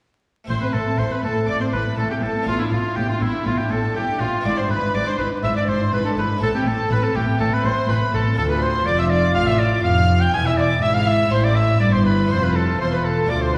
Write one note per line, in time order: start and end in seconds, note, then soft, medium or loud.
0.44 2.41 A3 medium
0.44 2.42 C4 medium
0.44 2.42 E4 medium
0.44 0.60 C6 medium
0.48 0.57 A1 medium
0.48 0.56 A2 medium
0.48 0.71 A2 medium
0.48 0.60 A3 medium
0.48 0.60 C5 medium
0.48 0.55 C5 medium
0.61 0.74 C4 medium
0.61 0.74 B4 medium
0.61 0.75 B4 medium
0.61 0.74 B5 medium
0.73 0.81 A1 medium
0.73 0.81 A2 medium
0.73 0.96 A2 medium
0.73 0.86 A3 medium
0.73 1.00 A4 medium
0.73 0.98 A4 medium
0.73 0.97 A5 medium
0.86 0.98 C4 medium
0.98 1.06 A1 medium
0.98 1.06 A2 medium
0.98 1.21 A2 medium
0.98 1.10 A3 medium
0.98 1.13 C5 medium
0.98 1.11 C5 medium
0.98 1.10 C6 medium
1.10 1.23 C4 medium
1.10 1.23 B4 medium
1.10 1.23 B5 medium
1.23 1.31 A1 medium
1.23 1.31 A2 medium
1.23 1.45 A2 medium
1.23 1.35 A3 medium
1.23 1.47 A4 medium
1.23 1.48 A4 medium
1.23 1.47 A5 loud
1.35 1.48 C4 medium
1.47 1.56 A1 medium
1.47 1.55 A2 medium
1.47 1.70 A2 medium
1.47 1.59 A3 medium
1.47 1.60 D5 medium
1.47 1.61 D5 medium
1.47 1.52 D6 loud
1.60 1.72 C4 medium
1.60 1.73 C5 medium
1.60 1.67 C5 medium
1.60 1.65 C6 medium
1.72 1.81 A1 medium
1.72 1.95 A2 medium
1.72 1.81 A2 medium
1.72 1.85 A3 medium
1.72 1.97 B4 medium
1.72 1.84 B4 medium
1.72 1.97 B5 medium
1.85 1.97 C4 medium
1.96 2.05 A1 medium
1.96 2.19 A2 medium
1.96 2.05 A2 medium
1.96 2.09 A3 medium
1.96 2.02 A4 medium
1.96 2.10 A4 medium
1.96 2.09 A5 loud
2.10 2.22 C4 medium
2.10 2.15 G4 medium
2.10 2.24 G4 medium
2.10 2.22 G5 medium
2.21 2.30 A1 medium
2.21 2.44 A2 medium
2.21 2.30 A2 medium
2.21 2.34 A3 medium
2.21 2.47 A4 medium
2.21 2.47 A5 medium
2.34 2.47 C4 medium
2.41 4.37 B3 medium
2.41 4.38 D4 medium
2.41 4.39 F4 medium
2.46 2.54 A1 medium
2.46 2.68 A2 medium
2.46 2.55 A2 medium
2.46 2.58 B3 medium
2.46 2.59 F4 medium
2.46 2.58 F4 medium
2.46 2.59 F5 loud
2.59 2.72 D4 medium
2.59 2.64 E4 medium
2.59 2.72 E4 medium
2.59 2.72 E5 medium
2.70 2.79 A1 medium
2.70 2.93 A2 medium
2.70 2.79 A2 medium
2.70 2.84 B3 medium
2.70 2.97 F4 medium
2.70 2.98 F4 medium
2.70 2.96 F5 medium
2.83 2.96 D4 medium
2.95 3.04 A1 medium
2.95 3.18 A2 medium
2.95 3.04 A2 medium
2.95 3.08 B3 medium
2.95 3.09 G4 medium
2.95 3.08 G4 medium
2.95 3.09 G5 loud
3.09 3.21 D4 medium
3.09 3.21 F4 medium
3.09 3.23 F4 medium
3.09 3.21 F5 medium
3.20 3.29 A1 medium
3.20 3.43 A2 medium
3.20 3.29 A2 medium
3.20 3.33 B3 medium
3.20 3.45 E4 medium
3.20 3.45 E5 medium
3.33 3.46 D4 medium
3.45 3.54 A1 medium
3.45 3.67 A2 medium
3.45 3.54 A2 medium
3.45 3.57 B3 medium
3.45 3.58 F4 medium
3.45 3.59 F4 medium
3.45 3.58 F5 medium
3.58 3.70 D4 medium
3.58 3.70 G4 medium
3.58 3.72 G4 medium
3.58 3.71 G5 medium
3.69 3.78 A1 medium
3.69 3.92 A2 medium
3.69 3.78 A2 medium
3.69 3.83 B3 medium
3.69 3.94 A4 medium
3.69 3.95 A4 medium
3.69 3.94 A5 medium
3.83 3.95 D4 medium
3.94 4.03 A1 medium
3.94 4.17 A2 medium
3.94 4.03 A2 medium
3.94 4.07 B3 medium
3.94 4.19 G4 medium
3.94 4.21 G4 medium
3.94 4.19 G5 loud
4.08 4.20 D4 medium
4.19 4.28 A1 medium
4.19 4.28 A2 medium
4.19 4.42 A2 medium
4.19 4.32 B3 medium
4.19 4.44 F4 medium
4.19 4.45 F4 medium
4.19 4.45 F5 medium
4.32 4.45 D4 medium
4.40 6.35 B3 medium
4.40 6.36 D4 medium
4.40 6.36 E4 medium
4.40 4.56 D5 medium
4.44 4.53 G#1 medium
4.44 4.52 G#2 medium
4.44 4.67 G#2 medium
4.44 4.56 E4 medium
4.44 4.59 D5 loud
4.44 4.50 D6 loud
4.56 4.69 D4 medium
4.56 4.69 C5 medium
4.56 4.70 C5 medium
4.56 4.62 C6 medium
4.68 4.77 G#1 medium
4.68 4.76 G#2 medium
4.68 4.91 G#2 medium
4.68 4.81 E4 medium
4.68 4.93 B4 medium
4.68 4.94 B5 loud
4.82 4.94 D4 medium
4.93 5.02 G#1 medium
4.93 5.02 G#2 medium
4.93 5.16 G#2 medium
4.93 5.05 E4 medium
4.93 5.05 D5 medium
4.93 5.06 D5 medium
4.93 5.06 D6 loud
5.06 5.19 D4 medium
5.06 5.18 C5 medium
5.06 5.17 C5 medium
5.06 5.19 C6 medium
5.18 5.27 G#1 medium
5.18 5.26 G#2 medium
5.18 5.40 G#2 medium
5.18 5.31 E4 medium
5.18 5.43 B4 medium
5.18 5.29 B4 medium
5.18 5.28 B5 loud
5.31 5.43 D4 medium
5.42 5.51 G#1 medium
5.42 5.50 G#2 medium
5.42 5.65 G#2 medium
5.42 5.55 E4 medium
5.42 5.48 E5 medium
5.42 5.55 E5 loud
5.42 5.49 E6 loud
5.55 5.68 D4 medium
5.55 5.67 D5 medium
5.55 5.70 D5 medium
5.55 5.61 D6 medium
5.67 5.76 G#1 medium
5.67 5.75 G#2 medium
5.67 5.90 G#2 medium
5.67 5.80 E4 medium
5.67 5.91 C5 medium
5.67 5.93 C5 medium
5.67 5.92 C6 loud
5.80 5.92 D4 medium
5.92 6.00 G#1 medium
5.92 6.14 G#2 medium
5.92 6.00 G#2 medium
5.92 6.04 E4 medium
5.92 6.04 B4 medium
5.92 5.99 B4 medium
5.92 6.04 B5 loud
6.04 6.17 D4 medium
6.04 6.16 A4 medium
6.04 6.11 A4 medium
6.04 6.18 A5 medium
6.16 6.25 G#1 medium
6.16 6.25 G#2 medium
6.16 6.39 G#2 medium
6.16 6.29 E4 medium
6.16 6.41 B4 medium
6.16 6.29 B4 medium
6.16 6.42 B5 loud
6.29 6.41 D4 medium
6.37 8.32 C4 medium
6.37 8.32 E4 medium
6.37 8.33 A4 medium
6.41 6.49 A1 medium
6.41 6.63 A2 medium
6.41 6.49 A2 medium
6.41 6.53 A3 medium
6.41 6.53 A4 medium
6.41 6.48 A4 loud
6.41 6.54 A5 loud
6.53 6.66 C4 medium
6.53 6.66 G4 medium
6.53 6.69 G4 medium
6.53 6.67 G5 loud
6.65 6.73 A1 medium
6.65 6.74 A2 medium
6.65 6.88 A2 medium
6.65 6.78 A3 medium
6.65 6.90 A4 medium
6.65 6.91 A4 medium
6.65 6.91 A5 loud
6.78 6.90 C4 medium
6.90 6.98 A1 medium
6.90 6.98 A2 medium
6.90 7.12 A2 medium
6.90 7.02 A3 medium
6.90 7.03 B4 loud
6.90 7.05 B4 medium
6.90 7.03 B5 loud
7.02 7.15 C4 medium
7.02 7.15 A4 medium
7.02 7.17 A4 medium
7.02 7.15 A5 medium
7.14 7.22 A1 medium
7.14 7.23 A2 medium
7.14 7.37 A2 medium
7.14 7.27 A3 medium
7.14 7.23 G4 medium
7.14 7.39 G4 medium
7.14 7.40 G5 loud
7.28 7.40 C4 medium
7.39 7.47 A1 medium
7.39 7.47 A2 medium
7.39 7.62 A2 medium
7.39 7.51 A3 medium
7.39 7.44 A4 medium
7.39 7.55 A4 loud
7.39 7.52 A5 loud
7.51 7.64 C4 medium
7.51 7.64 B4 medium
7.51 7.67 B4 medium
7.51 7.65 B5 medium
7.64 7.72 A1 medium
7.64 7.72 A2 medium
7.64 7.86 A2 medium
7.64 7.77 A3 medium
7.64 7.89 C5 medium
7.64 7.91 C5 medium
7.64 7.88 C6 loud
7.77 7.89 C4 medium
7.88 7.97 A1 medium
7.88 7.96 A2 medium
7.88 8.11 A2 medium
7.88 8.00 A3 medium
7.88 7.96 B4 medium
7.88 8.13 B4 medium
7.88 8.13 B5 loud
8.01 8.13 C4 medium
8.13 8.22 A1 medium
8.13 8.21 A2 medium
8.13 8.36 A2 medium
8.13 8.25 A3 medium
8.13 8.36 A4 medium
8.13 8.37 A4 medium
8.13 8.36 A5 loud
8.26 8.38 C4 medium
8.34 8.83 D2 medium
8.34 10.28 D4 medium
8.34 10.28 F4 medium
8.34 10.29 A4 medium
8.34 8.50 A4 loud
8.34 8.43 A4 loud
8.34 8.43 A5 loud
8.38 8.83 D2 medium
8.38 8.84 D2 medium
8.38 10.30 F4 medium
8.50 8.62 B4 medium
8.50 8.63 B4 medium
8.50 8.62 B5 loud
8.61 8.87 C5 medium
8.61 8.86 C5 loud
8.61 8.86 C6 loud
8.86 9.35 F1 medium
8.86 9.34 F2 medium
8.86 9.32 F2 medium
8.86 8.98 D5 loud
8.86 8.99 D5 loud
8.86 8.99 D6 loud
8.98 9.11 E5 medium
8.98 9.04 E5 loud
8.98 9.05 E6 medium
9.10 9.34 D5 medium
9.10 9.35 D5 medium
9.10 9.36 D6 loud
9.34 9.83 A1 medium
9.34 9.83 A2 medium
9.34 9.81 A2 medium
9.34 9.48 F5 loud
9.34 9.48 F6 loud
9.46 9.60 E5 medium
9.46 9.61 E6 loud
9.59 9.83 D5 loud
9.59 9.68 D5 medium
9.59 9.85 D6 loud
9.83 10.33 F1 medium
9.83 10.29 F2 medium
9.83 10.33 F2 medium
9.83 10.22 F5 loud
9.83 10.21 F5 medium
9.83 10.22 F6 loud
10.21 10.33 G5 medium
10.21 10.34 G5 loud
10.21 10.34 G6 loud
10.30 10.82 E1 medium
10.30 10.82 E2 medium
10.30 11.27 B3 medium
10.30 11.28 E4 medium
10.30 10.47 G#5 loud
10.34 10.79 E2 medium
10.34 10.81 E4 medium
10.34 10.46 G#5 loud
10.34 10.46 G#6 loud
10.46 10.59 E5 medium
10.46 10.51 E5 medium
10.46 10.52 E6 loud
10.57 10.84 D5 medium
10.57 10.66 D5 loud
10.57 10.83 D6 loud
10.82 11.31 G#1 medium
10.82 11.28 G#2 medium
10.82 11.31 G#2 medium
10.82 12.27 E4 medium
10.82 10.94 E5 loud
10.82 10.96 E5 loud
10.82 10.95 E6 loud
10.94 11.08 F5 medium
10.94 11.07 F5 loud
10.94 11.07 F6 loud
11.07 11.31 E5 medium
11.07 11.32 E5 medium
11.07 11.32 E6 loud
11.28 11.80 A1 medium
11.28 11.80 A2 medium
11.28 12.25 A3 medium
11.28 12.26 C4 medium
11.28 12.27 E4 medium
11.28 11.45 C5 loud
11.28 11.44 C6 loud
11.32 11.77 A2 medium
11.32 11.37 C5 medium
11.44 11.56 D5 medium
11.44 11.57 D5 medium
11.44 11.57 D6 medium
11.55 11.79 E5 loud
11.55 11.81 E5 medium
11.55 11.81 E6 loud
11.80 12.30 G1 medium
11.80 12.26 G2 medium
11.80 12.29 G2 medium
11.80 11.94 D5 medium
11.80 11.94 D6 loud
11.93 12.05 C5 medium
11.93 12.06 C6 medium
12.05 12.30 B4 medium
12.05 12.33 B4 medium
12.05 12.30 B5 loud
12.26 12.76 A3 medium
12.26 12.77 C4 medium
12.26 13.26 F4 medium
12.30 12.79 F1 medium
12.30 12.76 F2 medium
12.30 12.79 F2 medium
12.30 13.28 F4 medium
12.30 12.42 C5 loud
12.30 12.45 C5 loud
12.30 12.42 C6 loud
12.43 12.55 B4 medium
12.43 12.58 B4 medium
12.43 12.56 B5 loud
12.55 12.80 A4 medium
12.55 12.80 A5 loud
12.79 13.29 E1 medium
12.79 13.25 E2 medium
12.79 13.28 E2 medium
12.79 12.92 C5 medium
12.79 12.86 C5 medium
12.79 12.92 C6 loud
12.92 12.97 B4 medium
12.92 13.06 B4 medium
12.92 13.05 B5 medium
13.05 13.29 A4 medium
13.05 13.31 A4 medium
13.05 13.30 A5 loud
13.24 13.58 A3 medium
13.24 13.58 D4 medium
13.24 13.58 F4 medium
13.29 13.58 D2 medium
13.29 13.58 F4 medium
13.29 13.42 D5 medium
13.29 13.43 D5 loud
13.29 13.42 D6 loud
13.42 13.54 C5 medium
13.42 13.53 C5 medium
13.42 13.55 C6 medium
13.54 13.58 B4 medium
13.54 13.58 B5 medium